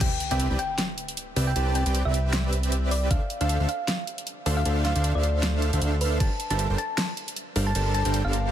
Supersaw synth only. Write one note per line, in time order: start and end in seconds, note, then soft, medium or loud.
0.01 0.11 C4 medium
0.01 0.11 G4 medium
0.01 0.11 B4 medium
0.01 0.11 D5 medium
0.01 0.11 E5 medium
0.31 0.48 C4 medium
0.31 0.48 G4 medium
0.31 0.48 B4 medium
0.31 0.48 D5 medium
0.31 0.48 E5 loud
0.50 0.59 C4 medium
0.50 0.59 G4 medium
0.50 0.59 B4 medium
0.50 0.59 D5 medium
0.50 0.59 G5 medium
1.36 1.52 C4 medium
1.36 1.52 G4 medium
1.36 1.52 B4 medium
1.36 1.52 D5 medium
1.36 1.52 E5 medium
1.56 1.83 C4 medium
1.56 1.83 G4 medium
1.56 1.83 B4 medium
1.56 1.83 D5 medium
1.56 1.83 A5 loud
1.86 2.03 C4 medium
1.86 2.03 G4 medium
1.86 2.03 B4 medium
1.86 2.03 D5 medium
1.86 2.03 G5 loud
2.05 3.09 C4 medium
2.05 3.09 G4 medium
2.05 3.09 B4 medium
2.05 3.09 D5 medium
2.05 3.09 E5 medium
3.11 3.21 D4 medium
3.11 3.21 A4 medium
3.11 3.21 C5 medium
3.11 3.21 E5 medium
3.11 3.21 F5 medium
3.41 3.58 D4 medium
3.41 3.58 A4 medium
3.41 3.58 C5 medium
3.41 3.58 E5 medium
3.41 3.58 F5 loud
3.60 3.68 D4 medium
3.60 3.68 A4 medium
3.60 3.68 C5 medium
3.60 3.68 E5 medium
3.60 3.68 F5 medium
4.46 4.61 D4 medium
4.46 4.61 A4 medium
4.46 4.61 C5 medium
4.46 4.61 E5 medium
4.46 4.61 F5 medium
4.65 4.93 D4 medium
4.65 4.93 A4 medium
4.65 4.93 C5 medium
4.65 4.93 E5 medium
4.65 4.93 F5 loud
4.95 5.12 D4 medium
4.95 5.12 A4 medium
4.95 5.12 C5 medium
4.95 5.12 E5 medium
4.95 5.12 F5 loud
5.15 5.71 D4 medium
5.15 5.71 A4 medium
5.15 5.71 C5 medium
5.15 5.71 E5 medium
5.15 5.71 F5 medium
5.73 5.80 D4 medium
5.73 5.80 A4 medium
5.73 5.80 C5 medium
5.73 5.80 E5 medium
5.73 5.80 F5 medium
5.82 6.18 D4 loud
5.82 6.18 A4 medium
5.82 6.18 C5 medium
5.82 6.18 E5 medium
5.82 6.18 F5 loud
6.20 6.31 G3 medium
6.20 6.31 D4 medium
6.20 6.31 A4 medium
6.20 6.31 A#4 medium
6.20 6.31 C5 medium
6.20 6.31 F5 medium
6.50 6.67 G3 medium
6.50 6.67 D4 medium
6.50 6.67 A4 medium
6.50 6.67 A#4 medium
6.50 6.67 C5 medium
6.50 6.67 E5 loud
6.70 6.78 G3 medium
6.70 6.78 D4 medium
6.70 6.78 A4 medium
6.70 6.78 A#4 medium
6.70 6.78 C5 medium
6.70 6.78 G5 medium
7.56 7.71 G3 medium
7.56 7.71 D4 medium
7.56 7.71 A4 medium
7.56 7.71 A#4 medium
7.56 7.71 C5 medium
7.56 7.71 F5 medium
7.75 8.03 G3 medium
7.75 8.03 D4 medium
7.75 8.03 A4 medium
7.75 8.03 A#4 medium
7.75 8.03 C5 medium
7.75 8.03 A5 loud
8.05 8.22 G3 medium
8.05 8.22 D4 medium
8.05 8.22 A4 medium
8.05 8.22 A#4 medium
8.05 8.22 C5 medium
8.05 8.22 G5 loud
8.24 8.51 G3 medium
8.24 8.51 D4 medium
8.24 8.51 A4 medium
8.24 8.51 A#4 medium
8.24 8.51 C5 medium
8.24 8.51 F5 medium